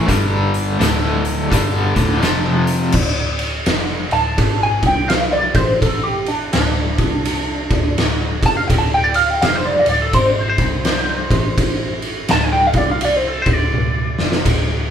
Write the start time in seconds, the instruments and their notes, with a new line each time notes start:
0.07 picked electric bass G1, overdriven electric guitar G2 D3 G3, kick, closed hi-hat
0.54 closed hi-hat
0.79 picked electric bass D1, overdriven electric guitar D2 A2 D3, snare, closed hi-hat
1.25 closed hi-hat
1.50 picked electric bass G1, overdriven electric guitar G2 D3 G3, kick, closed hi-hat
1.95 picked electric bass D1, overdriven electric guitar D2 A2 D3, kick, closed hi-hat
2.21 picked electric bass F1, overdriven electric guitar F2 C3 F3, snare, closed hi-hat
2.67 closed hi-hat
2.92 picked electric bass D1, kick, crash
3.39 ride
3.66 picked electric bass F1, snare, ride
4.11 picked electric bass D1, lead electric guitar A5, ride
4.38 picked electric bass G#1, kick, ride
4.63 lead electric guitar G#5
4.83 picked electric bass C2, kick, ride
4.87 lead electric guitar G5
5.09 lead electric guitar F5, snare, ride
5.33 lead electric guitar D5
5.54 picked electric bass A1, lead electric guitar C5, kick, ride
5.82 lead electric guitar A4, kick, ride
6.04 lead electric guitar G4
6.26 lead electric guitar D4, ride
6.53 picked electric bass D1, lead electric guitar D4, snare, ride
6.98 picked electric bass C2, kick, ride
7.25 ride
7.71 picked electric bass D1, kick, ride
7.97 picked electric bass D1, snare, ride
8.43 picked electric bass F1, lead electric guitar A5, kick, ride
8.57 lead electric guitar F5
8.68 picked electric bass D1, lead electric guitar G5, kick, ride
8.78 lead electric guitar A5
8.94 lead electric guitar G5
9.04 lead electric guitar D5
9.14 lead electric guitar F5, ride
9.30 lead electric guitar G5
9.42 picked electric bass F1, lead electric guitar F5, snare, ride
9.55 lead electric guitar C5
9.65 lead electric guitar D5
9.79 lead electric guitar F5
9.86 picked electric bass D1, lead electric guitar D5, ride
10.02 lead electric guitar A4
10.13 picked electric bass G#1, lead electric guitar C5, kick, ride
10.26 lead electric guitar D5
10.39 lead electric guitar C5
10.50 lead electric guitar C5
10.58 picked electric bass C2, kick, ride
10.85 snare, ride
11.30 picked electric bass A1, kick, ride
11.58 kick, ride
12.02 ride
12.28 picked electric bass D1, lead electric guitar A5, snare, ride
12.44 lead electric guitar G#5
12.53 lead electric guitar G5
12.67 lead electric guitar F5
12.73 picked electric bass C2, kick, ride
12.78 lead electric guitar D5
12.91 lead electric guitar F5
13.01 ride
13.05 lead electric guitar D5
13.16 lead electric guitar C5
13.28 lead electric guitar A4
13.42 picked electric bass D1, lead electric guitar C5, ride
13.46 kick
13.53 lead electric guitar D5
13.73 picked electric bass D1, high tom
14.18 picked electric bass F1, snare
14.32 snare
14.45 picked electric bass D1, kick, ride, splash